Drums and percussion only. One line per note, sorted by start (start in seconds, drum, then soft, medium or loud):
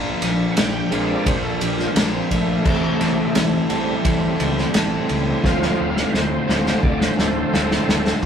0.22 snare soft
0.22 ride medium
0.57 snare loud
0.57 ride loud
0.92 ride medium
1.26 kick loud
1.26 ride loud
1.61 ride medium
1.79 snare soft
1.96 snare loud
1.96 ride loud
2.31 kick medium
2.31 ride medium
2.65 kick loud
2.65 crash medium
3.01 snare soft
3.01 ride medium
3.35 snare loud
3.35 ride loud
3.70 ride medium
4.05 kick loud
4.05 ride medium
4.40 ride medium
4.58 snare soft
4.74 snare loud
4.74 ride loud
5.09 ride medium
5.44 kick loud
5.44 snare medium
5.62 snare medium
5.97 snare medium
6.14 snare medium
6.49 snare medium
6.66 snare medium
6.83 kick loud
7.01 snare medium
7.19 snare medium
7.54 snare medium
7.71 snare medium
7.89 snare loud
8.07 snare medium